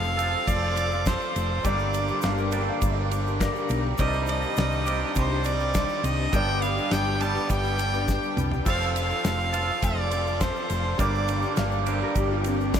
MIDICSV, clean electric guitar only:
0, 0, Header, 1, 2, 480
1, 0, Start_track
1, 0, Tempo, 584226
1, 1355, Time_signature, 4, 2, 24, 8
1, 10516, End_track
2, 0, Start_track
2, 0, Title_t, "Clean electric guitar"
2, 0, Program_c, 0, 27
2, 0, Note_on_c, 0, 53, 90
2, 0, Note_on_c, 0, 60, 100
2, 0, Note_on_c, 0, 65, 102
2, 0, Note_on_c, 0, 69, 91
2, 130, Note_off_c, 0, 53, 0
2, 132, Note_off_c, 0, 69, 0
2, 134, Note_off_c, 0, 60, 0
2, 138, Note_off_c, 0, 65, 0
2, 142, Note_on_c, 0, 69, 89
2, 147, Note_on_c, 0, 65, 79
2, 154, Note_on_c, 0, 60, 80
2, 161, Note_on_c, 0, 53, 75
2, 1336, Note_off_c, 0, 69, 0
2, 1339, Note_off_c, 0, 65, 0
2, 1341, Note_on_c, 0, 43, 87
2, 1343, Note_off_c, 0, 60, 0
2, 1346, Note_off_c, 0, 53, 0
2, 1348, Note_on_c, 0, 50, 97
2, 1353, Note_on_c, 0, 55, 88
2, 1354, Note_on_c, 0, 58, 100
2, 1362, Note_on_c, 0, 62, 99
2, 1364, Note_on_c, 0, 67, 100
2, 2056, Note_off_c, 0, 43, 0
2, 2059, Note_off_c, 0, 50, 0
2, 2062, Note_off_c, 0, 58, 0
2, 2066, Note_off_c, 0, 67, 0
2, 2069, Note_on_c, 0, 67, 78
2, 2074, Note_off_c, 0, 62, 0
2, 2078, Note_on_c, 0, 58, 82
2, 2078, Note_on_c, 0, 62, 91
2, 2079, Note_off_c, 0, 55, 0
2, 2082, Note_on_c, 0, 55, 78
2, 2087, Note_on_c, 0, 50, 74
2, 2093, Note_on_c, 0, 43, 69
2, 3266, Note_off_c, 0, 58, 0
2, 3267, Note_off_c, 0, 50, 0
2, 3270, Note_on_c, 0, 48, 83
2, 3274, Note_off_c, 0, 43, 0
2, 3275, Note_off_c, 0, 55, 0
2, 3279, Note_on_c, 0, 51, 103
2, 3283, Note_on_c, 0, 55, 97
2, 3285, Note_off_c, 0, 62, 0
2, 3289, Note_on_c, 0, 62, 102
2, 3291, Note_off_c, 0, 67, 0
2, 3294, Note_on_c, 0, 67, 90
2, 3982, Note_off_c, 0, 48, 0
2, 3986, Note_off_c, 0, 51, 0
2, 3988, Note_off_c, 0, 67, 0
2, 3991, Note_on_c, 0, 67, 87
2, 3994, Note_off_c, 0, 62, 0
2, 3997, Note_on_c, 0, 62, 81
2, 4000, Note_off_c, 0, 55, 0
2, 4003, Note_on_c, 0, 55, 76
2, 4010, Note_on_c, 0, 51, 78
2, 4014, Note_on_c, 0, 48, 74
2, 5183, Note_off_c, 0, 67, 0
2, 5186, Note_off_c, 0, 62, 0
2, 5189, Note_off_c, 0, 55, 0
2, 5191, Note_on_c, 0, 43, 100
2, 5192, Note_off_c, 0, 51, 0
2, 5194, Note_off_c, 0, 48, 0
2, 5198, Note_on_c, 0, 50, 89
2, 5203, Note_on_c, 0, 55, 95
2, 5205, Note_on_c, 0, 59, 94
2, 5210, Note_on_c, 0, 62, 99
2, 5215, Note_on_c, 0, 67, 106
2, 5902, Note_off_c, 0, 43, 0
2, 5905, Note_off_c, 0, 50, 0
2, 5907, Note_off_c, 0, 67, 0
2, 5908, Note_off_c, 0, 55, 0
2, 5909, Note_off_c, 0, 59, 0
2, 5911, Note_off_c, 0, 62, 0
2, 5917, Note_on_c, 0, 67, 91
2, 5921, Note_on_c, 0, 62, 80
2, 5929, Note_on_c, 0, 59, 89
2, 5930, Note_on_c, 0, 55, 82
2, 5937, Note_on_c, 0, 50, 74
2, 5938, Note_on_c, 0, 43, 69
2, 7103, Note_off_c, 0, 67, 0
2, 7105, Note_off_c, 0, 55, 0
2, 7105, Note_off_c, 0, 62, 0
2, 7108, Note_on_c, 0, 53, 98
2, 7109, Note_off_c, 0, 59, 0
2, 7113, Note_off_c, 0, 50, 0
2, 7114, Note_off_c, 0, 43, 0
2, 7117, Note_on_c, 0, 60, 90
2, 7125, Note_on_c, 0, 65, 93
2, 7132, Note_on_c, 0, 69, 96
2, 7817, Note_off_c, 0, 69, 0
2, 7818, Note_off_c, 0, 53, 0
2, 7823, Note_off_c, 0, 60, 0
2, 7827, Note_off_c, 0, 65, 0
2, 7827, Note_on_c, 0, 69, 84
2, 7838, Note_on_c, 0, 65, 80
2, 7844, Note_on_c, 0, 60, 75
2, 7851, Note_on_c, 0, 53, 73
2, 9014, Note_off_c, 0, 69, 0
2, 9020, Note_off_c, 0, 65, 0
2, 9021, Note_on_c, 0, 43, 94
2, 9023, Note_off_c, 0, 60, 0
2, 9026, Note_off_c, 0, 53, 0
2, 9027, Note_on_c, 0, 50, 86
2, 9030, Note_on_c, 0, 55, 90
2, 9033, Note_on_c, 0, 58, 97
2, 9039, Note_on_c, 0, 62, 103
2, 9042, Note_on_c, 0, 67, 97
2, 9731, Note_off_c, 0, 43, 0
2, 9734, Note_off_c, 0, 50, 0
2, 9737, Note_off_c, 0, 58, 0
2, 9742, Note_off_c, 0, 67, 0
2, 9746, Note_on_c, 0, 67, 92
2, 9748, Note_off_c, 0, 62, 0
2, 9751, Note_on_c, 0, 62, 89
2, 9755, Note_on_c, 0, 58, 82
2, 9759, Note_off_c, 0, 55, 0
2, 9762, Note_on_c, 0, 55, 88
2, 9765, Note_on_c, 0, 50, 81
2, 9766, Note_on_c, 0, 43, 81
2, 10516, Note_off_c, 0, 43, 0
2, 10516, Note_off_c, 0, 50, 0
2, 10516, Note_off_c, 0, 55, 0
2, 10516, Note_off_c, 0, 58, 0
2, 10516, Note_off_c, 0, 62, 0
2, 10516, Note_off_c, 0, 67, 0
2, 10516, End_track
0, 0, End_of_file